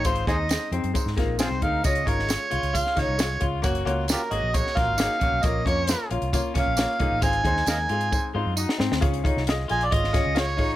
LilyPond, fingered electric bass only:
\new Staff \with { instrumentName = "Fingered electric bass" } { \clef bass \time 4/4 \key des \major \tempo 4 = 134 aes,,8 ees,8. r16 f,16 ges,16 r16 aes,16 aes,,16 bes,,8 c,16 d,8 | des,8 aes,,8. r16 c,16 des,8 r16 des,16 c,8. des,8 | ges,,8 des,8. r16 aes,,16 bes,,8 r16 bes,,16 aes,,8 r16 bes,,16 ces,16 | bes,,8 f,8. r16 bes,,16 c,8 r16 c,16 bes,,8 r16 c,16 a,,16 |
aes,,8 ees,8 ees,8 aes,8. r16 aes,16 ges,8 r16 aes,16 d,16 | des,8. c,8. bes,,8 aes,,8. des,8. a,,8 | }